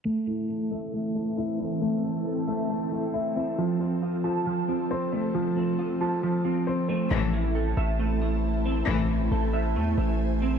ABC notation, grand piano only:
X:1
M:4/4
L:1/8
Q:1/4=136
K:Am
V:1 name="Grand piano"
A, A,2 A, A, A, E E | A, A,2 A, A, A, E E | F, F,2 F, F, F, C C | F, F,2 F, F, F, C C |
z8 | z8 |]